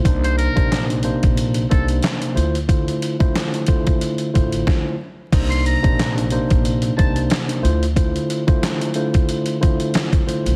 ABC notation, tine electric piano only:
X:1
M:4/4
L:1/16
Q:"Swing 16ths" 1/4=91
K:Dphr
V:1 name="Tine electric piano"
[C,B,DEc]3 [C,B,DEc]3 [C,B,DEc]4 [C,B,DEc]4 [D,A,=EFc] z | [D,A,=EFc]3 [D,A,EFc]3 [D,A,EFc]4 [D,A,EFc]4 z2 | [C,B,DEc]3 [C,B,DEc]3 [C,B,DEc]4 [C,B,DEc]4 [D,A,=EFc] z | [D,A,=EFc]3 [D,A,EFc]3 [D,A,EFc]4 [D,A,EFc]4 [D,A,EFc]2 |]